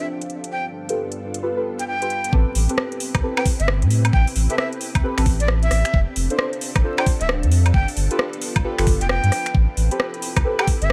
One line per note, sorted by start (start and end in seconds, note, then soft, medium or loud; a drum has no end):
0.00 0.51 F3 medium
0.00 0.48 C4 medium
0.00 0.51 D4 medium
0.00 1.26 D4 medium
0.00 0.48 G4 medium
0.00 0.49 A4 medium
0.00 0.52 C5 medium
0.00 2.33 F5 medium
0.00 10.93 A5 medium
0.21 closed hi-hat medium
0.30 closed hi-hat soft
0.44 closed hi-hat medium
0.52 2.31 G2 medium
0.52 2.31 B3 medium
0.52 2.31 D4 medium
0.52 2.31 F4 medium
0.52 2.96 G4 medium
0.52 2.31 A4 medium
0.52 0.66 G5 medium
0.73 5.94 B4 medium
0.89 1.40 F4 medium
0.89 1.40 G4 medium
0.89 1.40 A4 medium
0.89 1.40 B4 medium
0.89 closed hi-hat medium
1.12 closed hi-hat soft
1.34 closed hi-hat medium
1.42 1.55 F4 medium
1.42 1.55 G4 medium
1.42 1.55 A4 medium
1.42 1.55 B4 loud
1.57 1.73 F4 medium
1.57 1.73 G4 medium
1.57 1.73 A4 medium
1.57 1.73 B4 loud
1.79 1.86 G5 medium
1.79 closed hi-hat medium
1.88 2.33 G5 loud
2.02 2.32 F4 medium
2.02 2.32 G4 medium
2.02 2.31 A4 medium
2.02 2.31 B4 medium
2.02 closed hi-hat medium
2.10 closed hi-hat soft
2.24 closed hi-hat medium
2.33 2.45 A1 loud
2.33 7.70 C4 medium
2.33 2.64 C4 loud
2.33 6.67 C4 medium
2.33 5.90 E4 medium
2.33 7.70 G4 medium
2.33 2.64 G4 loud
2.33 2.64 A4 loud
2.33 5.90 B4 medium
2.33 2.64 B4 loud
2.33 kick loud
2.55 2.68 A1 medium
2.55 6.67 G5 medium
2.55 open hi-hat loud
2.69 3.21 C4 medium
2.69 3.21 G4 medium
2.69 3.21 A4 medium
2.69 3.21 B4 medium
2.69 closed hi-hat medium
2.78 cross-stick loud
2.92 closed hi-hat soft
3.00 open hi-hat loud
3.15 3.22 C2 medium
3.15 kick loud
3.15 cross-stick medium
3.15 closed hi-hat medium
3.15 high woodblock medium
3.23 3.35 C4 medium
3.23 3.35 G4 medium
3.23 3.35 A4 medium
3.23 3.35 B4 loud
3.37 3.53 C4 medium
3.37 3.53 G4 medium
3.37 3.53 A4 medium
3.37 3.53 B4 loud
3.37 3.45 G5 medium
3.37 finger snap medium
3.37 high woodblock medium
3.46 kick loud
3.46 open hi-hat loud
3.60 3.84 G1 medium
3.60 3.67 E5 medium
3.60 closed hi-hat medium
3.68 cross-stick loud
3.82 4.11 A2 loud
3.82 closed hi-hat medium
3.90 open hi-hat loud
4.05 closed hi-hat medium
4.05 high woodblock medium
4.13 4.26 A1 loud
4.13 4.26 G5 medium
4.13 kick loud
4.27 open hi-hat medium
4.36 4.48 A1 medium
4.36 open hi-hat loud
4.50 5.01 C4 medium
4.50 5.01 G4 medium
4.50 5.01 A4 medium
4.50 5.01 B4 medium
4.50 4.55 E5 medium
4.50 closed hi-hat medium
4.58 4.67 E5 medium
4.58 cross-stick loud
4.73 closed hi-hat soft
4.81 open hi-hat loud
4.95 5.02 C2 medium
4.95 kick loud
4.95 closed hi-hat medium
4.95 high woodblock medium
5.03 5.15 C4 medium
5.03 5.15 G4 medium
5.03 5.15 A4 medium
5.03 5.16 B4 loud
5.18 5.69 A1 medium
5.18 5.34 C4 medium
5.18 5.34 G4 medium
5.18 5.34 A4 medium
5.18 5.34 B4 loud
5.18 finger snap medium
5.18 open hi-hat medium
5.26 kick loud
5.26 open hi-hat loud
5.40 5.48 D5 medium
5.40 closed hi-hat medium
5.48 cross-stick loud
5.63 5.99 E5 loud
5.63 closed hi-hat medium
5.71 5.84 A1 medium
5.71 cross-stick medium
5.71 open hi-hat loud
5.85 finger snap medium
5.85 closed hi-hat medium
5.94 6.06 F1 loud
5.94 8.41 D4 medium
5.94 9.51 D4 medium
5.94 9.51 A4 medium
5.94 kick loud
6.16 6.29 F1 medium
6.16 open hi-hat loud
6.21 7.74 C5 medium
6.21 8.44 F5 medium
6.30 6.82 D4 medium
6.30 6.82 F4 medium
6.30 6.82 A4 medium
6.30 6.82 C5 medium
6.30 closed hi-hat medium
6.39 cross-stick loud
6.53 closed hi-hat soft
6.61 open hi-hat loud
6.76 6.83 A1 medium
6.76 kick loud
6.76 cross-stick medium
6.76 closed hi-hat medium
6.76 high woodblock medium
6.84 6.96 D4 medium
6.84 6.96 F4 medium
6.84 6.96 A4 medium
6.84 6.96 C5 loud
6.98 7.14 D4 medium
6.98 7.14 F4 medium
6.98 7.14 A4 medium
6.98 7.14 C5 loud
6.98 7.06 G5 medium
6.98 finger snap medium
6.98 high woodblock medium
7.06 kick loud
7.06 open hi-hat loud
7.20 7.45 D1 medium
7.20 7.28 E5 medium
7.20 closed hi-hat medium
7.29 cross-stick loud
7.43 7.72 F2 loud
7.43 closed hi-hat medium
7.52 open hi-hat loud
7.66 closed hi-hat medium
7.66 high woodblock medium
7.74 7.87 G1 loud
7.74 9.53 B3 medium
7.74 9.53 F4 medium
7.74 9.55 F4 medium
7.74 7.87 G5 medium
7.74 kick loud
7.88 open hi-hat medium
7.97 8.09 G1 medium
7.97 open hi-hat loud
8.11 8.62 F4 medium
8.11 8.62 G4 medium
8.11 8.62 A4 medium
8.11 8.62 B4 medium
8.11 closed hi-hat medium
8.19 cross-stick loud
8.27 10.62 B4 medium
8.33 closed hi-hat soft
8.42 open hi-hat loud
8.56 8.63 B1 medium
8.56 10.93 G5 medium
8.56 kick loud
8.56 closed hi-hat medium
8.56 high woodblock medium
8.64 8.76 F4 medium
8.64 8.76 G4 medium
8.64 8.76 A4 medium
8.64 8.76 B4 loud
8.78 8.86 G1 loud
8.78 8.95 F4 medium
8.78 8.95 G4 medium
8.78 8.95 A4 medium
8.78 8.95 B4 loud
8.78 finger snap medium
8.78 open hi-hat medium
8.87 8.99 G1 medium
8.87 kick loud
8.87 open hi-hat loud
9.01 9.20 F1 medium
9.01 9.08 G5 medium
9.01 closed hi-hat medium
9.09 9.55 G5 loud
9.09 cross-stick loud
9.23 9.31 G2 loud
9.23 closed hi-hat medium
9.32 cross-stick medium
9.32 open hi-hat loud
9.46 finger snap medium
9.46 closed hi-hat medium
9.54 9.67 A1 loud
9.54 10.93 C4 medium
9.54 10.93 E4 medium
9.54 10.93 G4 medium
9.54 10.93 B4 medium
9.54 kick loud
9.70 10.93 A4 medium
9.77 9.89 A1 medium
9.77 open hi-hat loud
9.83 10.93 B5 medium
9.91 10.43 C4 medium
9.91 10.43 G4 medium
9.91 10.43 A4 medium
9.91 10.43 B4 medium
9.91 closed hi-hat medium
10.00 cross-stick loud
10.14 closed hi-hat soft
10.22 open hi-hat loud
10.36 10.44 C2 medium
10.36 kick loud
10.36 cross-stick medium
10.36 closed hi-hat medium
10.36 high woodblock medium
10.45 10.57 C4 medium
10.45 10.57 G4 medium
10.45 10.57 A4 medium
10.45 10.57 B4 loud
10.59 10.75 C4 medium
10.59 10.75 G4 medium
10.59 10.75 A4 medium
10.59 10.75 B4 loud
10.59 10.67 G5 medium
10.59 finger snap medium
10.59 high woodblock medium
10.67 kick loud
10.67 open hi-hat loud
10.82 10.93 G1 loud
10.82 10.89 E5 medium
10.82 closed hi-hat medium